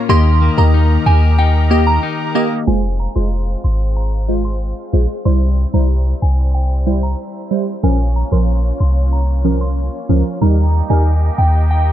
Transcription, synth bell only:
0.09 0.34 C6 loud
0.58 0.70 A#5 medium
1.06 1.19 G#5 medium
1.38 1.51 G5 medium
1.87 1.99 A#5 medium
2.67 2.80 G#5 loud
3.00 3.12 A#5 medium
3.16 3.41 C6 medium
3.64 3.89 C6 medium
3.96 4.09 A#5 medium
4.45 4.57 C6 medium
5.25 5.50 C6 loud
5.74 5.86 A#5 medium
6.22 6.35 G#5 medium
6.54 6.67 G5 medium
7.03 7.15 A#5 medium
7.84 7.96 G#5 loud
8.16 8.28 A#5 medium
8.32 8.57 C6 medium
8.80 9.05 C6 medium
9.13 9.25 A#5 medium
9.61 9.73 C6 medium
10.42 10.66 A#5 loud
10.90 11.02 G#5 medium
11.38 11.51 G5 medium
11.71 11.83 G5 medium

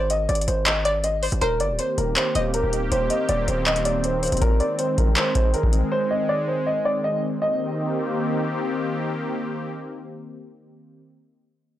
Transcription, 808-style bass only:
0.00 0.28 G#1 loud
0.29 0.47 G#1 loud
0.48 1.29 G#1 loud
1.32 1.41 G#1 loud
1.42 1.62 D#1 loud
1.60 1.71 G1 loud
1.70 1.79 D#1 loud
1.98 2.16 D#1 loud
2.35 2.62 D#1 loud
2.63 2.90 D#1 loud
2.92 3.10 D#1 loud
3.29 3.47 D#1 loud
3.48 4.29 D#1 loud
4.32 4.41 D#1 loud

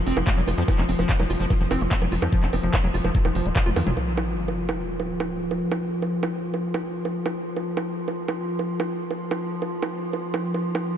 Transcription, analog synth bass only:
0.06 0.13 F1 loud
0.17 0.23 F1 medium
0.37 0.44 F1 medium
0.48 0.54 F1 loud
0.58 0.64 F2 medium
0.78 0.85 F1 medium
0.89 0.95 F1 loud
0.99 1.05 F1 loud
1.19 1.26 F1 medium
1.30 1.36 F1 loud
1.40 1.46 F1 medium
1.61 1.67 F1 medium
1.71 1.77 F1 loud
1.81 1.88 F1 medium
2.02 2.08 F1 medium
2.12 2.18 F1 loud
2.22 2.29 F2 medium
2.43 2.49 F1 medium
2.53 2.60 F1 loud
2.63 2.70 F1 medium
2.84 2.90 F1 medium
2.94 3.01 F1 loud
3.04 3.11 F1 medium
3.25 3.31 F1 medium
3.35 3.42 F1 loud
3.46 3.52 D#1 medium
3.66 3.73 F1 medium
3.76 3.83 F2 loud
3.87 3.93 F1 medium

